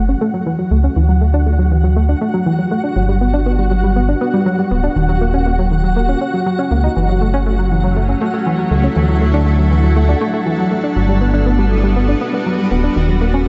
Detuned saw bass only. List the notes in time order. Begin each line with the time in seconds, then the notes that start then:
Already playing: F#1
0.71 C#2
0.96 D2
2.96 G1
4.71 D1
4.96 D#1
6.71 C#2
6.96 F#1
8.71 C#2
8.96 D2
10.96 G1
12.71 D1
12.96 D#1